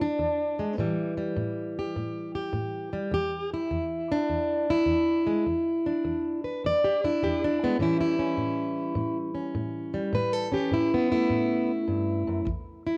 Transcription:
Already playing: E2
0.01 D4
0.19 E2
0.59 G#3
0.78 A2 E3 G3
1.17 G3
1.36 A2
1.79 G4
1.96 A2
2.35 G4
2.53 A2
2.93 G3
3.12 E2 G4
3.54 E4
3.71 E2
4.12 D4
4.29 E2
4.70 E4
4.86 E2
5.27 G#3
5.46 E2
5.86 D4
6.05 E2
6.44 B4
6.64 E2 D5
6.84 G4
7.04 D4 E4
7.23 E2 G4
7.44 D4
7.63 G#3 B3
7.79 A2 E3 G3 C#4 E4
8.01 E4
8.19 C#4
8.37 A2
8.95 A2
9.35 C#4
9.55 A2
9.94 G3
10.13 A2 B4
10.33 A4
10.52 C#4 G4
10.71 A2 E4
10.94 B3
11.12 A3 E4
11.30 A2
11.87 G2
12.27 F#2
12.45 E2, kick
12.86 E4

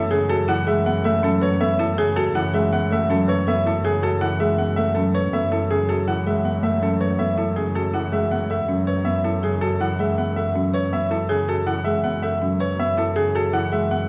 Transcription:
Already playing: F#2 E3 F#3 G#3 A3 B3 E4 A4
0.11 C#3 G#4
0.29 F#4 A4
0.48 E3 E4 F#5
0.67 G#3 G#4 E5
0.86 B3 F#5
1.04 A3 A4 E5
1.23 F#3 C#4 A4
1.42 B4 C#5
1.60 B3 A4 E5
1.79 E4 A4
1.98 C#3 G#4
2.16 F#4 A4
2.35 E3 E4 F#5
2.54 G#3 G#4 E5
2.73 B3 F#5
2.91 A3 A4 E5
3.10 F#3 C#4 A4
3.28 B4 C#5
3.47 B3 A4 E5
3.66 E4 A4
3.84 C#3 G#4
4.03 F#4 A4
4.21 E3 E4 F#5
4.40 G#3 G#4 E5
4.58 B3 F#5
4.76 A3 A4 E5
4.95 F#3 C#4 A4
5.14 B4 C#5
5.33 B3 A4 E5
5.52 E4 A4
5.70 C#3 G#4
5.89 F#4 A4
6.07 E3 E4 F#5
6.26 G#3 G#4 E5
6.44 B3 F#5
6.62 A3 A4 E5
6.81 F#3 C#4 A4
7.01 B4 C#5
7.19 B3 A4 E5
7.38 E4 A4
7.56 C#3 G#4
7.75 F#4 A4
7.93 E3 E4 F#5
8.12 G#3 G#4 E5
8.31 B3 F#5
8.50 A4 E5
8.68 F#3 C#4
8.87 B4 C#5
9.05 B3 E5
9.24 E4 A4
9.43 C#3 G#4
9.61 F#4 A4
9.80 E3 E4 F#5
9.99 G#3 G#4 E5
10.18 B3 F#5
10.36 A4 E5
10.55 F#3 C#4
10.74 B4 C#5
10.92 B3 E5
11.11 E4 A4
11.29 C#3 G#4
11.48 F#4 A4
11.67 E3 E4 F#5
11.85 G#3 G#4 E5
12.04 B3 F#5
12.22 A4 E5
12.42 F#3 C#4
12.60 B4 C#5
12.79 B3 E5
12.97 E4 A4
13.16 C#3 G#4
13.35 F#4 A4
13.53 E3 E4 F#5
13.72 G#3 G#4 E5
13.91 B3 F#5

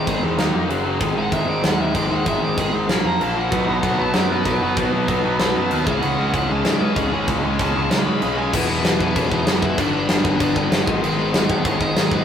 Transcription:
0.07 G#1 G#2 D#3 G#3 G#4, kick, crash
0.23 E2 G#2 D#3 G#3
0.38 D#2 D#3 A#3 D#4, snare, crash
0.54 F2 D#3 A#3 D#4
0.68 F#1 F#2 C#3 F#3, crash
0.85 F#2 C#3 F#3
0.99 G#1 G#2 D#3 G#3, kick, crash
1.15 G#1 G#2 D#3 G#3 F#5
1.32 G#1 G#2 D#3 G#3 E5, kick, crash
1.47 G#1 G#2 D#3 G#3 D5
1.63 D#2 G#2 D#3 G#3 F#5, snare, crash
1.79 D#2 G#2 D#3 G#3 E5
1.95 G#1 G#2 D#3 G#3 D5, kick, crash
2.11 D#2 G#2 D#3 G#3 F#5
2.26 G#1 G#2 D#3 G#3 E5, kick, crash
2.41 G#1 G#2 D#3 G#3 D5
2.56 G#1 G#2 D#3 G#3 G#4, kick, crash
2.73 G#1 G#2 D#3 G#3
2.88 A#1 A#2 F3 A#3 B5, snare, crash
3.04 F2 A#2 F3 A#3 A#5
3.20 A#1 A#2 F3 A#3 A5, crash
3.35 A#2 F3 A#3 F#5
3.51 B1 B2 F#3 B3 D#4, kick, crash
3.66 B1 B2 F#3 B3
3.82 B1 B2 F#3 B3 F#5, kick, crash
3.98 B1 B2 F#3 B3 A5
4.14 F#2 B2 F#3 B3 D5, snare, crash
4.30 F#2 B2 F#3 B3 B4
4.45 B1 B2 F#3 B3 B4, kick, crash
4.61 F#1 B2 F#3 B3
4.77 B1 B2 F#3 B3 D#4, kick, crash
4.92 B1 B2 F#3 B3
5.08 B1 B2 F#3 B3, kick, crash
5.24 B1 B2 F#3 B3
5.39 B1 B2 F#3 B3 B5, snare, crash
5.55 F#2 B2 F#3 B3 A5
5.71 D#2 B2 F#3 B3 A5, crash
5.85 C#2 C#3 E3 G#3 C#4, kick
5.90 F#5
6.01 C#2 C#3 G#3 C#4, crash
6.17 C#2 C#3 G#3 C#4
6.32 C#2 C#3 G#3 C#4 F#5, kick, crash
6.48 C#2 C#3 G#3 C#4 A5
6.64 G#2 C#3 G#3 C#4 D5, snare, crash
6.80 G#2 C#3 G#3 C#4 B4
6.96 C#2 C#3 G#3 C#4 G#4, kick, crash
7.12 G#1 C#3 E3 G#3 C#4
7.27 C#2 C#3 G#3 C#4, kick, crash
7.43 C#2 C#3 G#3 C#4
7.59 C#2 C#3 G#3 C#4 A5, kick, crash
7.75 C#2 C#3 G#3 C#4
7.90 C#2 C#3 G#3 C#4 B5, snare, crash
8.05 G#2 C#3 G#3 C#4
8.22 B1 C#3 G#3 C#4, crash
8.38 C#3 G#3 C#4 G#5
8.53 E1 E2 B2 E3 G#3 B3 E4 B4, kick, crash
8.69 E2 B2 E3
8.85 E1 E2 B2 E3 B3 B4, snare, crash
9.00 E1 E2 B2 E3 B3 B4, kick
9.15 E1 E2 B2 E3 C#4 C#5, kick, crash
9.30 E1 E2 B2 E3 D#4 D#5, kick
9.45 F#1 E2 B2 E3, snare, crash
9.62 E2 B2 E3 E4 E5, kick
9.77 G1 G2 D3 G3 B3 D4 D5, kick, crash
9.93 G2 D3 G3
10.09 G1 G2 D3 G3, snare, crash
10.24 G1 G2 D3 G3 C#4 C#5, kick
10.39 G1 G2 D3 G3 B3 B4, kick, crash
10.55 G1 G2 D3 G3, kick
10.70 G1 G2 D3 G3, snare, crash
10.86 G#1 G#2 D#3 G#3 B3 D#4, kick
11.01 G#1 G#2 D#3 G#3 B3 B4, crash
11.17 G#2 D#3 G#3
11.33 G#1 G#2 D#3 G#3 B3 B4, snare, crash
11.49 G#1 G#2 D#3 G#3, kick
11.63 G#1 G#2 D#3 G#3 C#4 C#5, kick, crash
11.80 G#1 G#2 D#3 G#3 D#4 D#5, kick
11.95 G#1 G#2 D#3 G#3, snare, crash
12.11 G#2 D#3 G#3 B3 D#4 B4, kick

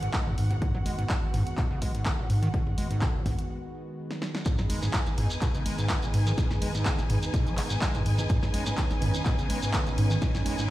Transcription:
Already playing: D#3 G#3 B3 F#4 F#5
0.03 G#2, closed hi-hat
0.13 G#3, kick, clap, closed hi-hat
0.27 G#2, mid tom
0.38 G#2, open hi-hat
0.51 G#2, closed hi-hat, mid tom
0.62 G#2, kick, closed hi-hat
0.75 F#3, mid tom
0.86 G#1 G#3, open hi-hat
0.99 G#2, closed hi-hat
1.09 G#2, kick, clap, closed hi-hat
1.23 G#1
1.34 G#1 G#2, mid tom, open hi-hat
1.47 closed hi-hat
1.57 B2, kick, clap, closed hi-hat
1.71 C#3
1.82 G#1 G#3, kick, open hi-hat
1.95 G#2, closed hi-hat
2.05 D#3, kick, clap, closed hi-hat
2.19 G#2
2.30 G#2, open hi-hat
2.43 D#3, closed hi-hat
2.54 B2, kick, closed hi-hat
2.67 mid tom
2.78 G#1 G#3, open hi-hat
2.91 G#2, closed hi-hat
3.01 D#3, kick, clap, closed hi-hat
3.15 G#1 G#2
3.26 G#1 G#2, kick, mid tom, open hi-hat
3.39 closed hi-hat
4.11 snare
4.22 snare
4.35 snare
4.45 G#2 D#3 G#3 B3 D#4 G#4, kick, closed hi-hat, shekere
4.58 F#3 B4, snare, mid tom, shekere
4.70 G#1 G#3, open hi-hat, ride
4.80 G#2 G#5, snare, closed hi-hat, shekere
4.93 G#2, kick, clap, closed hi-hat, shekere
5.07 G#1, snare, closed hi-hat, shekere
5.18 G#1 G#2, mid tom, open hi-hat, ride
5.30 closed hi-hat, shekere
5.41 B2, kick, clap, closed hi-hat, shekere
5.55 C#3, closed hi-hat, shekere
5.66 G#1 G#3, open hi-hat, ride
5.79 G#2, closed hi-hat, shekere
5.89 D#3, kick, clap, closed hi-hat, shekere
6.03 G#2, closed hi-hat, shekere
6.14 G#2, open hi-hat, ride
6.27 D#3, closed hi-hat, shekere
6.38 B2, kick, snare, closed hi-hat, shekere
6.51 snare, mid tom, shekere
6.62 G#1 G#3, open hi-hat, ride
6.75 G#2, snare, closed hi-hat, shekere
6.85 D#3, kick, clap, closed hi-hat, shekere
6.98 G#1 G#2, snare, closed hi-hat, shekere
7.10 G#1 G#2, mid tom, open hi-hat, ride
7.23 closed hi-hat, shekere
7.33 B2, kick, closed hi-hat, shekere
7.47 F#3, closed hi-hat, shekere
7.57 G#1 G#2, clap, open hi-hat, ride
7.70 G#2, closed hi-hat, shekere
7.81 G#3, kick, clap, closed hi-hat, shekere
7.94 G#2, closed hi-hat, mid tom, shekere
8.06 G#2, open hi-hat, ride
8.18 G#2, closed hi-hat, mid tom, shekere
8.29 G#2 C#4, kick, closed hi-hat, shekere
8.42 F#3, snare, mid tom, shekere
8.54 G#1 G#3, open hi-hat, ride
8.66 G#2, snare, closed hi-hat, shekere
8.77 G#2, kick, clap, closed hi-hat, shekere
8.91 G#1, snare, closed hi-hat, shekere
9.02 G#1 G#2, mid tom, open hi-hat, ride
9.14 closed hi-hat, shekere
9.25 B2, kick, clap, closed hi-hat, shekere
9.39 C#3, closed hi-hat, shekere
9.50 G#1 G#3, open hi-hat, ride
9.63 G#2, closed hi-hat, shekere
9.73 D#3, kick, clap, closed hi-hat, shekere
9.87 G#2, closed hi-hat, shekere
9.98 G#2, open hi-hat, ride
10.11 D#3, closed hi-hat, shekere
10.22 B2, kick, snare, closed hi-hat, shekere
10.35 snare, mid tom, shekere
10.46 G#1 G#3, open hi-hat, ride
10.58 G#2, snare, closed hi-hat, shekere

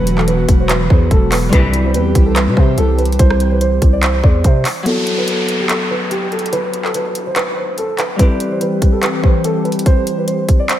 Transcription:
Already playing: E1 E3 F#3 B3 E4 F#4 B4
0.07 closed hi-hat
0.18 A4, clap
0.28 B4, closed hi-hat
0.49 E1, kick, closed hi-hat
0.60 C5
0.69 B4, clap, closed hi-hat
0.90 E2 C5, kick
1.11 E1 A4, kick, closed hi-hat
1.32 B4, clap, open hi-hat
1.49 C2 G2 E3 G3 C4 G4, kick, closed hi-hat
1.53 E4 G4 B4
1.74 closed hi-hat
1.85 C5
1.94 E2 B4, closed hi-hat
2.15 C2, kick, closed hi-hat
2.26 A4
2.36 B4, clap, closed hi-hat
2.47 C3
2.57 C3 C5, kick
2.78 C2 A4, closed hi-hat
2.98 B4, closed hi-hat
3.05 closed hi-hat
3.12 closed hi-hat
3.19 C2 C5, kick, closed hi-hat
3.30 cross-stick
3.40 closed hi-hat
3.52 B4
3.61 C5, closed hi-hat
3.82 C2, kick, closed hi-hat
3.93 D5
4.03 C5, clap, closed hi-hat
4.24 E2 D5, kick
4.44 C3 C5, kick, closed hi-hat
4.65 clap, open hi-hat
4.83 F#3 B3 A4, closed hi-hat, downlifter
4.87 E4 F#4
5.07 closed hi-hat
5.18 B4
5.28 A4, closed hi-hat
5.49 closed hi-hat
5.60 G4
5.69 A4, clap, closed hi-hat
5.91 B4
6.11 G4, closed hi-hat
6.32 A4, closed hi-hat
6.39 closed hi-hat
6.46 closed hi-hat
6.53 B4, closed hi-hat
6.74 closed hi-hat
6.84 A4, clap
6.94 B4, closed hi-hat
7.15 closed hi-hat
7.27 C5
7.36 B4, clap, closed hi-hat
7.57 C5
7.78 A4, closed hi-hat
7.99 B4, clap, closed hi-hat
8.16 E3 G3 C4 G4 B4, kick, closed hi-hat
8.20 E4 G4
8.40 closed hi-hat
8.52 C5
8.61 B4, closed hi-hat
8.82 kick, closed hi-hat
8.92 A4
9.03 B4, clap, closed hi-hat
9.23 C5, kick
9.44 A4, closed hi-hat
9.65 B4, closed hi-hat
9.72 closed hi-hat
9.79 closed hi-hat
9.86 C5, kick, closed hi-hat
10.07 closed hi-hat
10.18 B4
10.28 C5, closed hi-hat
10.49 kick, closed hi-hat
10.60 D5
10.69 C5, clap, closed hi-hat

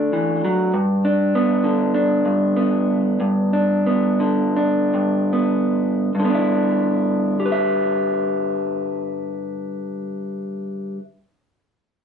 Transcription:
Already playing: D3 A3 D4 F#4
0.13 E3
0.45 F#3
0.74 G2
1.05 D4
1.35 B3
1.64 D3
1.95 D4
2.25 G2
2.57 B3
3.20 G2
3.53 D4
3.87 B3
4.20 D3
4.57 D4
4.94 G2
5.33 B3
6.15 G2
6.20 D3
6.25 B3
6.30 D4
6.35 E4
7.40 G4
7.46 B4
7.52 E5

